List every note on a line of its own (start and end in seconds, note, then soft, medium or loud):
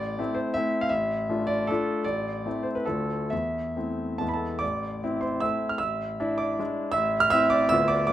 0.00 0.18 A1 medium
0.00 0.36 D5 loud
0.18 0.52 A3 medium
0.18 0.53 C4 medium
0.18 0.53 E4 medium
0.35 0.55 C5 medium
0.54 0.89 A3 medium
0.54 0.89 C4 medium
0.54 0.89 E4 medium
0.54 0.82 E5 loud
0.81 0.91 F5 medium
0.89 1.29 A1 medium
0.89 1.48 E5 medium
1.29 1.65 A3 soft
1.29 1.65 D4 medium
1.29 1.66 F4 medium
1.47 1.68 D5 medium
1.67 2.03 A3 medium
1.67 2.03 D4 medium
1.67 2.04 F4 medium
1.67 2.05 A4 medium
2.04 2.45 A1 medium
2.04 2.66 D5 medium
2.46 2.83 A3 soft
2.46 2.84 C4 soft
2.46 2.84 E4 medium
2.63 2.76 C5 medium
2.75 2.87 B4 medium
2.86 3.31 D2 medium
2.86 3.28 A3 soft
2.86 3.29 D4 soft
2.86 3.29 F4 soft
2.86 3.31 A4 medium
3.30 3.76 E2 medium
3.30 4.42 E5 medium
3.76 4.17 A3 soft
3.76 4.17 C4 soft
3.76 4.18 E4 medium
4.18 4.62 E2 medium
4.18 4.58 G#3 soft
4.18 4.59 B3 soft
4.18 4.59 E4 soft
4.18 4.28 A5 medium
4.29 4.37 B5 medium
4.34 4.60 A4 medium
4.34 4.61 A5 medium
4.59 5.02 A1 medium
4.59 5.19 D5 medium
4.59 5.22 D6 medium
5.04 5.40 C4 medium
5.04 5.40 E4 medium
5.21 5.42 C5 medium
5.21 5.43 C6 medium
5.40 5.77 A3 medium
5.40 5.77 C4 soft
5.40 5.77 E4 medium
5.40 5.69 E5 medium
5.40 5.71 E6 medium
5.69 5.80 F6 medium
5.78 6.19 A1 medium
5.78 6.36 E5 medium
5.78 6.39 E6 medium
6.20 6.55 D4 medium
6.20 6.56 E4 medium
6.38 6.58 D5 medium
6.38 6.58 D6 medium
6.59 6.92 G#3 medium
6.59 6.92 D4 medium
6.59 6.93 E4 medium
6.92 7.32 A1 medium
6.92 7.20 E5 loud
6.92 7.22 E6 loud
7.20 7.32 F6 loud
7.30 7.68 C4 medium
7.30 7.69 E4 medium
7.30 7.51 E5 loud
7.30 7.52 E6 loud
7.50 7.70 D5 medium
7.50 7.71 D6 loud
7.69 8.08 D2 medium
7.69 8.06 B3 medium
7.69 8.06 F4 medium
7.69 7.89 E5 medium
7.69 7.89 E6 loud
7.88 8.07 D5 medium
7.88 8.05 D6 loud
8.07 8.13 E2 medium
8.07 8.13 D5 medium
8.07 8.13 D6 medium